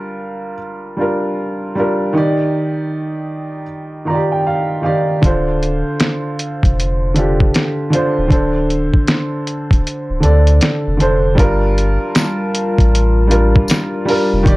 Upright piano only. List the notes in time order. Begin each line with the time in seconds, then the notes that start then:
Already playing: G3 D4 F4 A#4
0.97 G3 D4 F4
1.01 A#4
1.75 G3 D4 F4
1.80 A#4
2.13 D#3 D#4 G4
2.17 D5
4.05 D#3 D#4 F4 A#5
4.10 D5
4.15 G4
4.32 G5
4.47 F5
4.82 D#3 D#4 G4 F5
4.86 D5
5.22 D3 D4 F4
5.26 C5
7.14 D3 D4 F4
7.18 G4
7.90 D3 D4 F4
7.94 C5
8.28 D3 D4 A4
8.32 C5
10.20 D3 D4 A4
10.25 D5
10.97 D3 D4 A4
11.02 C5
11.35 G3 D4 F4
11.40 A#4
13.27 G3 D4 F4
13.32 A#4
14.05 G3 D4 F4
14.10 A#4
14.43 D#3 D#4 G4
14.47 D5